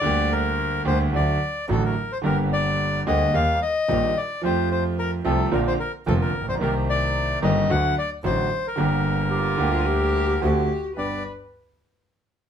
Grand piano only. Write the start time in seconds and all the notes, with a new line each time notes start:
0.01 D2 D3 G3 A#3 G4
0.85 D2 D3 G3 A#3 G4
1.13 D2 D3 F#3 A3 F#4
1.68 A1 A2 D3 F#3 A3 F#4
2.22 G1 G2 D3 G3 A#3
2.26 G4
3.07 D2 D3 G3 A#3 G4
3.34 D#2 D#3 G3 A#3 G4
3.88 A#1 A#2 D#3 G3 A#3 G4
4.43 F2 F3 A3 C4 G4
5.24 C2 C3 F3 A3 C4 G4
5.51 A#1 A#2 D3 A#3 C4 F4
6.06 F1 F2 D3 A#3 C4 F4
6.41 A1
6.48 A#1
6.54 B1
6.59 C2 C3 D#3 A#3 C4
6.63 G4
7.42 G1 G2 D#3 A#3 C4 G4
7.70 D2 D3 F#3 A3 F#4
8.24 A1 A2 D3 F#3 A3 F#4
8.76 G1 G2 D3 G3 A#3 G4
9.57 D2 D3 G3 A#3 G4
10.42 D2 D3 A3 C4 F#4
10.97 G2 B3 D4 G4